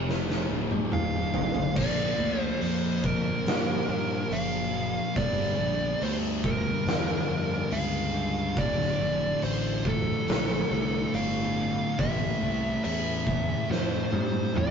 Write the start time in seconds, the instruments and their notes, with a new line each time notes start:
Already playing: fingered electric bass F1, distorted electric guitar F2 C3 F3
0.09 snare
0.30 snare
0.49 fingered electric bass D1, distorted electric guitar D2 A2 D3
0.71 high tom
0.92 lead electric guitar F5, mid tom
1.34 floor tom
1.55 floor tom
1.76 fingered electric bass A#1, overdriven electric guitar A#2 F3 A#3, lead electric guitar D5, kick, crash
2.19 fingered electric bass D2, overdriven electric guitar A#2 F3 A#3
2.40 lead electric guitar C5
2.61 fingered electric bass F2, overdriven electric guitar A#2 F3 A#3, lead electric guitar C5, open hi-hat
3.04 overdriven electric guitar A#2 F3 A#3, lead electric guitar A#4, kick
3.46 fingered electric bass G2, overdriven electric guitar A#2 F3 A#3, snare, open hi-hat
3.88 fingered electric bass G2, overdriven electric guitar A#2 F3 A#3
4.30 fingered electric bass F#1, overdriven electric guitar A#2 F3 A#3, lead electric guitar F5, open hi-hat
4.73 overdriven electric guitar A#2 F3 A#3
5.16 fingered electric bass G1, overdriven electric guitar G2 D3 G3, lead electric guitar D5, kick, open hi-hat
5.40 snare
5.58 fingered electric bass A#1, overdriven electric guitar G2 D3 G3
6.01 fingered electric bass D2, overdriven electric guitar G2 D3 G3, lead electric guitar C5, open hi-hat
6.43 overdriven electric guitar G2 D3 G3, lead electric guitar A#4, kick
6.86 fingered electric bass E2, overdriven electric guitar G2 D3 G3, snare, open hi-hat
7.28 fingered electric bass F2, overdriven electric guitar G2 D3 G3
7.71 fingered electric bass C#2, overdriven electric guitar G2 D3 G3, lead electric guitar F5, open hi-hat
8.13 overdriven electric guitar G2 D3 G3
8.56 fingered electric bass D1, overdriven electric guitar D2 A2 D3, lead electric guitar D5, kick, open hi-hat
8.80 snare
8.98 fingered electric bass F1, overdriven electric guitar D2 A2 D3
9.41 fingered electric bass A1, overdriven electric guitar D2 A2 D3, lead electric guitar C5, open hi-hat
9.83 overdriven electric guitar D2 A2 D3, lead electric guitar A4, kick
9.87 distorted electric guitar D2
10.26 fingered electric bass A#1, overdriven electric guitar D2 A2 D3, snare, open hi-hat
10.70 fingered electric bass C2, overdriven electric guitar D2 A2 D3
11.13 fingered electric bass G1, overdriven electric guitar D2 A2 D3, lead electric guitar F5, open hi-hat
11.56 overdriven electric guitar D2 A2 D3
11.97 fingered electric bass A1, overdriven electric guitar A2 E3 A3, lead electric guitar E5, kick, open hi-hat
12.41 fingered electric bass C2, overdriven electric guitar A2 E3 A3
12.84 fingered electric bass E2, overdriven electric guitar A2 E3 A3, lead electric guitar E5, open hi-hat
13.26 overdriven electric guitar A2 E3 A3, kick
13.70 fingered electric bass F2, overdriven electric guitar A2 E3 A3, lead electric guitar C5, snare
14.12 fingered electric bass G2, overdriven electric guitar A2 E3 A3, high tom
14.55 fingered electric bass F2, overdriven electric guitar A2 E3 A3, lead electric guitar E5, mid tom